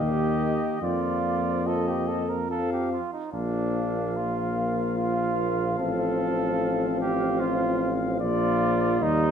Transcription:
Already playing: tuba D#2, cornet D#5
0.00 euphonium D#3, french horn A#3, flugelhorn G4
0.82 tuba F2, euphonium F3, french horn A#3, flugelhorn F4, cornet D5
1.66 flugelhorn A4, cornet D#5
1.88 flugelhorn G4
2.08 flugelhorn A4
2.29 flugelhorn A#4
2.49 euphonium F3, french horn C4, flugelhorn A4, cornet F5
2.73 flugelhorn G4
2.93 flugelhorn F4
3.13 flugelhorn D#4
3.31 tuba A#1, euphonium F3, french horn A#3, flugelhorn D4, cornet F5
4.16 flugelhorn F4
4.98 flugelhorn F4
5.79 tuba A1, french horn C4, flugelhorn A4
7.00 flugelhorn G4
7.40 flugelhorn F4
8.20 tuba A#1, euphonium F3, french horn A#3, flugelhorn F4, cornet D5
9.00 tuba D#2, euphonium G3, flugelhorn D#4, cornet D#5

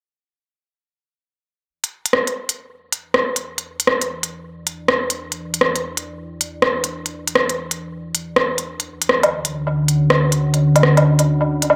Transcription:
1.69 ambient pad E3 E4 D5 G5
1.84 closed hi-hat
2.06 closed hi-hat
2.13 cross-stick
2.27 closed hi-hat
2.49 closed hi-hat
2.92 closed hi-hat
3.14 cross-stick
3.36 closed hi-hat
3.58 closed hi-hat
3.80 closed hi-hat
3.87 cross-stick
4.01 closed hi-hat
4.23 closed hi-hat
4.67 closed hi-hat
4.88 cross-stick
5.10 closed hi-hat
5.32 closed hi-hat
5.54 closed hi-hat
5.61 cross-stick
5.76 closed hi-hat
5.97 closed hi-hat
6.41 closed hi-hat
6.62 cross-stick
6.84 closed hi-hat
7.06 closed hi-hat
7.27 closed hi-hat
7.35 cross-stick
7.49 closed hi-hat
7.71 closed hi-hat
8.15 closed hi-hat
8.36 cross-stick
8.58 closed hi-hat
8.66 ambient pad D3 D4 C#5 F#5
8.80 closed hi-hat
9.02 closed hi-hat
9.09 cross-stick
9.23 closed hi-hat, low woodblock
9.45 closed hi-hat
9.88 closed hi-hat
10.10 cross-stick
10.32 closed hi-hat
10.54 closed hi-hat
10.76 closed hi-hat, low woodblock
10.83 cross-stick
10.97 closed hi-hat, low woodblock
11.19 closed hi-hat
11.62 closed hi-hat
11.70 low woodblock

